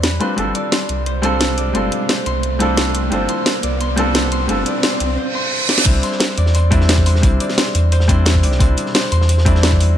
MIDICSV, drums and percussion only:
0, 0, Header, 1, 2, 480
1, 0, Start_track
1, 0, Key_signature, 0, "major"
1, 0, Tempo, 342857
1, 528, Time_signature, 4, 2, 24, 8
1, 13968, End_track
2, 0, Start_track
2, 0, Title_t, "Drums"
2, 49, Note_on_c, 9, 38, 125
2, 49, Note_on_c, 9, 42, 76
2, 189, Note_off_c, 9, 38, 0
2, 189, Note_off_c, 9, 42, 0
2, 287, Note_on_c, 9, 42, 85
2, 427, Note_off_c, 9, 42, 0
2, 529, Note_on_c, 9, 42, 76
2, 669, Note_off_c, 9, 42, 0
2, 769, Note_on_c, 9, 42, 82
2, 909, Note_off_c, 9, 42, 0
2, 1010, Note_on_c, 9, 38, 117
2, 1010, Note_on_c, 9, 42, 76
2, 1150, Note_off_c, 9, 38, 0
2, 1150, Note_off_c, 9, 42, 0
2, 1248, Note_on_c, 9, 42, 84
2, 1388, Note_off_c, 9, 42, 0
2, 1489, Note_on_c, 9, 42, 76
2, 1629, Note_off_c, 9, 42, 0
2, 1728, Note_on_c, 9, 42, 94
2, 1868, Note_off_c, 9, 42, 0
2, 1969, Note_on_c, 9, 38, 122
2, 1969, Note_on_c, 9, 42, 78
2, 2109, Note_off_c, 9, 38, 0
2, 2109, Note_off_c, 9, 42, 0
2, 2208, Note_on_c, 9, 42, 86
2, 2348, Note_off_c, 9, 42, 0
2, 2448, Note_on_c, 9, 42, 76
2, 2588, Note_off_c, 9, 42, 0
2, 2688, Note_on_c, 9, 42, 84
2, 2828, Note_off_c, 9, 42, 0
2, 2929, Note_on_c, 9, 38, 109
2, 2929, Note_on_c, 9, 42, 74
2, 3069, Note_off_c, 9, 38, 0
2, 3069, Note_off_c, 9, 42, 0
2, 3167, Note_on_c, 9, 42, 82
2, 3307, Note_off_c, 9, 42, 0
2, 3406, Note_on_c, 9, 42, 75
2, 3546, Note_off_c, 9, 42, 0
2, 3645, Note_on_c, 9, 42, 92
2, 3785, Note_off_c, 9, 42, 0
2, 3884, Note_on_c, 9, 38, 124
2, 3884, Note_on_c, 9, 42, 78
2, 4024, Note_off_c, 9, 38, 0
2, 4024, Note_off_c, 9, 42, 0
2, 4124, Note_on_c, 9, 42, 88
2, 4264, Note_off_c, 9, 42, 0
2, 4365, Note_on_c, 9, 42, 74
2, 4505, Note_off_c, 9, 42, 0
2, 4602, Note_on_c, 9, 42, 84
2, 4742, Note_off_c, 9, 42, 0
2, 4844, Note_on_c, 9, 38, 115
2, 4844, Note_on_c, 9, 42, 78
2, 4984, Note_off_c, 9, 38, 0
2, 4984, Note_off_c, 9, 42, 0
2, 5085, Note_on_c, 9, 42, 92
2, 5225, Note_off_c, 9, 42, 0
2, 5328, Note_on_c, 9, 42, 80
2, 5468, Note_off_c, 9, 42, 0
2, 5565, Note_on_c, 9, 42, 97
2, 5705, Note_off_c, 9, 42, 0
2, 5808, Note_on_c, 9, 38, 120
2, 5808, Note_on_c, 9, 42, 79
2, 5948, Note_off_c, 9, 38, 0
2, 5948, Note_off_c, 9, 42, 0
2, 6045, Note_on_c, 9, 42, 86
2, 6185, Note_off_c, 9, 42, 0
2, 6286, Note_on_c, 9, 42, 81
2, 6426, Note_off_c, 9, 42, 0
2, 6525, Note_on_c, 9, 42, 91
2, 6665, Note_off_c, 9, 42, 0
2, 6765, Note_on_c, 9, 38, 120
2, 6765, Note_on_c, 9, 42, 80
2, 6905, Note_off_c, 9, 38, 0
2, 6905, Note_off_c, 9, 42, 0
2, 7006, Note_on_c, 9, 42, 90
2, 7146, Note_off_c, 9, 42, 0
2, 7965, Note_on_c, 9, 38, 88
2, 8089, Note_off_c, 9, 38, 0
2, 8089, Note_on_c, 9, 38, 100
2, 8202, Note_on_c, 9, 42, 97
2, 8204, Note_off_c, 9, 42, 0
2, 8204, Note_on_c, 9, 42, 82
2, 8204, Note_on_c, 9, 49, 106
2, 8206, Note_on_c, 9, 36, 122
2, 8229, Note_off_c, 9, 38, 0
2, 8344, Note_off_c, 9, 42, 0
2, 8344, Note_off_c, 9, 49, 0
2, 8346, Note_off_c, 9, 36, 0
2, 8442, Note_on_c, 9, 42, 67
2, 8444, Note_off_c, 9, 42, 0
2, 8444, Note_on_c, 9, 42, 90
2, 8569, Note_on_c, 9, 38, 42
2, 8584, Note_off_c, 9, 42, 0
2, 8678, Note_off_c, 9, 38, 0
2, 8678, Note_on_c, 9, 38, 124
2, 8683, Note_on_c, 9, 46, 80
2, 8685, Note_off_c, 9, 38, 0
2, 8685, Note_on_c, 9, 38, 119
2, 8685, Note_on_c, 9, 42, 86
2, 8802, Note_off_c, 9, 38, 0
2, 8802, Note_on_c, 9, 38, 39
2, 8823, Note_off_c, 9, 46, 0
2, 8825, Note_off_c, 9, 42, 0
2, 8923, Note_on_c, 9, 42, 67
2, 8926, Note_off_c, 9, 42, 0
2, 8926, Note_on_c, 9, 42, 92
2, 8942, Note_off_c, 9, 38, 0
2, 9048, Note_on_c, 9, 38, 53
2, 9066, Note_off_c, 9, 42, 0
2, 9166, Note_on_c, 9, 42, 85
2, 9173, Note_off_c, 9, 42, 0
2, 9173, Note_on_c, 9, 42, 83
2, 9188, Note_off_c, 9, 38, 0
2, 9313, Note_off_c, 9, 42, 0
2, 9405, Note_on_c, 9, 42, 71
2, 9406, Note_on_c, 9, 36, 107
2, 9535, Note_on_c, 9, 38, 47
2, 9545, Note_off_c, 9, 42, 0
2, 9546, Note_off_c, 9, 36, 0
2, 9643, Note_on_c, 9, 42, 99
2, 9647, Note_off_c, 9, 38, 0
2, 9647, Note_off_c, 9, 42, 0
2, 9647, Note_on_c, 9, 38, 124
2, 9647, Note_on_c, 9, 42, 87
2, 9651, Note_off_c, 9, 38, 0
2, 9651, Note_on_c, 9, 38, 127
2, 9770, Note_on_c, 9, 36, 64
2, 9787, Note_off_c, 9, 42, 0
2, 9791, Note_off_c, 9, 38, 0
2, 9885, Note_on_c, 9, 46, 79
2, 9891, Note_on_c, 9, 42, 70
2, 9910, Note_off_c, 9, 36, 0
2, 10017, Note_on_c, 9, 38, 56
2, 10025, Note_off_c, 9, 46, 0
2, 10031, Note_off_c, 9, 42, 0
2, 10122, Note_on_c, 9, 42, 92
2, 10126, Note_off_c, 9, 42, 0
2, 10126, Note_on_c, 9, 42, 86
2, 10127, Note_on_c, 9, 36, 127
2, 10157, Note_off_c, 9, 38, 0
2, 10266, Note_off_c, 9, 42, 0
2, 10267, Note_off_c, 9, 36, 0
2, 10366, Note_on_c, 9, 42, 93
2, 10368, Note_off_c, 9, 42, 0
2, 10368, Note_on_c, 9, 42, 59
2, 10493, Note_on_c, 9, 38, 36
2, 10505, Note_off_c, 9, 38, 0
2, 10505, Note_on_c, 9, 38, 35
2, 10508, Note_off_c, 9, 42, 0
2, 10608, Note_off_c, 9, 38, 0
2, 10608, Note_on_c, 9, 38, 114
2, 10609, Note_on_c, 9, 42, 82
2, 10610, Note_off_c, 9, 38, 0
2, 10610, Note_off_c, 9, 42, 0
2, 10610, Note_on_c, 9, 38, 127
2, 10610, Note_on_c, 9, 42, 82
2, 10730, Note_off_c, 9, 38, 0
2, 10730, Note_on_c, 9, 38, 48
2, 10750, Note_off_c, 9, 42, 0
2, 10847, Note_on_c, 9, 42, 74
2, 10849, Note_off_c, 9, 42, 0
2, 10849, Note_on_c, 9, 42, 101
2, 10870, Note_off_c, 9, 38, 0
2, 10989, Note_off_c, 9, 42, 0
2, 11088, Note_on_c, 9, 42, 86
2, 11089, Note_off_c, 9, 42, 0
2, 11089, Note_on_c, 9, 42, 87
2, 11204, Note_on_c, 9, 38, 59
2, 11229, Note_off_c, 9, 42, 0
2, 11327, Note_on_c, 9, 36, 113
2, 11328, Note_on_c, 9, 42, 67
2, 11330, Note_off_c, 9, 42, 0
2, 11330, Note_on_c, 9, 42, 104
2, 11344, Note_off_c, 9, 38, 0
2, 11467, Note_off_c, 9, 36, 0
2, 11470, Note_off_c, 9, 42, 0
2, 11556, Note_on_c, 9, 42, 81
2, 11563, Note_on_c, 9, 38, 111
2, 11567, Note_off_c, 9, 38, 0
2, 11567, Note_off_c, 9, 42, 0
2, 11567, Note_on_c, 9, 38, 127
2, 11567, Note_on_c, 9, 42, 86
2, 11690, Note_on_c, 9, 36, 66
2, 11707, Note_off_c, 9, 38, 0
2, 11707, Note_off_c, 9, 42, 0
2, 11802, Note_on_c, 9, 42, 75
2, 11810, Note_on_c, 9, 46, 77
2, 11830, Note_off_c, 9, 36, 0
2, 11922, Note_on_c, 9, 38, 49
2, 11942, Note_off_c, 9, 42, 0
2, 11950, Note_off_c, 9, 46, 0
2, 12044, Note_on_c, 9, 42, 102
2, 12046, Note_on_c, 9, 36, 127
2, 12049, Note_off_c, 9, 42, 0
2, 12049, Note_on_c, 9, 42, 79
2, 12062, Note_off_c, 9, 38, 0
2, 12186, Note_off_c, 9, 36, 0
2, 12189, Note_off_c, 9, 42, 0
2, 12280, Note_on_c, 9, 42, 65
2, 12288, Note_off_c, 9, 42, 0
2, 12288, Note_on_c, 9, 42, 90
2, 12406, Note_on_c, 9, 38, 35
2, 12428, Note_off_c, 9, 42, 0
2, 12521, Note_on_c, 9, 46, 83
2, 12528, Note_off_c, 9, 38, 0
2, 12528, Note_on_c, 9, 38, 126
2, 12528, Note_on_c, 9, 42, 82
2, 12542, Note_off_c, 9, 38, 0
2, 12542, Note_on_c, 9, 38, 106
2, 12646, Note_off_c, 9, 38, 0
2, 12646, Note_on_c, 9, 38, 40
2, 12661, Note_off_c, 9, 46, 0
2, 12668, Note_off_c, 9, 42, 0
2, 12763, Note_on_c, 9, 42, 61
2, 12768, Note_off_c, 9, 42, 0
2, 12768, Note_on_c, 9, 42, 93
2, 12786, Note_off_c, 9, 38, 0
2, 12899, Note_on_c, 9, 38, 54
2, 12908, Note_off_c, 9, 42, 0
2, 13007, Note_on_c, 9, 42, 86
2, 13015, Note_off_c, 9, 42, 0
2, 13015, Note_on_c, 9, 42, 85
2, 13039, Note_off_c, 9, 38, 0
2, 13132, Note_on_c, 9, 38, 54
2, 13155, Note_off_c, 9, 42, 0
2, 13244, Note_on_c, 9, 42, 68
2, 13246, Note_on_c, 9, 36, 114
2, 13248, Note_off_c, 9, 42, 0
2, 13248, Note_on_c, 9, 42, 97
2, 13272, Note_off_c, 9, 38, 0
2, 13377, Note_on_c, 9, 38, 48
2, 13386, Note_off_c, 9, 36, 0
2, 13388, Note_off_c, 9, 42, 0
2, 13486, Note_off_c, 9, 38, 0
2, 13486, Note_on_c, 9, 38, 127
2, 13486, Note_on_c, 9, 42, 89
2, 13488, Note_off_c, 9, 38, 0
2, 13488, Note_on_c, 9, 38, 120
2, 13495, Note_off_c, 9, 42, 0
2, 13495, Note_on_c, 9, 42, 85
2, 13610, Note_on_c, 9, 36, 68
2, 13628, Note_off_c, 9, 38, 0
2, 13635, Note_off_c, 9, 42, 0
2, 13727, Note_on_c, 9, 46, 72
2, 13729, Note_on_c, 9, 42, 72
2, 13750, Note_off_c, 9, 36, 0
2, 13867, Note_off_c, 9, 46, 0
2, 13869, Note_off_c, 9, 42, 0
2, 13968, End_track
0, 0, End_of_file